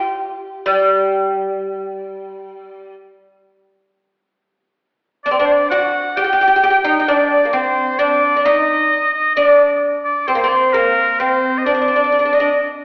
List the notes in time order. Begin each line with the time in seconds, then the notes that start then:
Already playing: G4
0.66 G3
5.24 D4 D5
5.31 C4
5.38 D4 D5
5.46 C5
5.52 D5
5.70 F#4 F#5
6.17 G4 G5
6.24 G4
6.33 G4
6.41 G4
6.48 G4
6.56 G4
6.63 G4
6.70 G4
6.84 D#4
6.99 D#4
7.08 D4 D5
7.45 A#3
7.53 C4 C5
7.99 D4 D5
8.36 D4
8.45 D#4 D#5
9.14 D#5
9.35 D4 D5
10.05 D5
10.27 C4 C5
10.35 A#3
10.42 C4 C5
10.48 D5
10.56 C5
10.73 A#3 A#4
11.20 C4 C5
11.58 D#5
11.64 D4 D5
11.75 D4
11.82 D4
11.88 D4
11.96 D4
12.04 D4
12.12 D4
12.19 D4
12.25 D4
12.33 D4 D#5
12.40 D4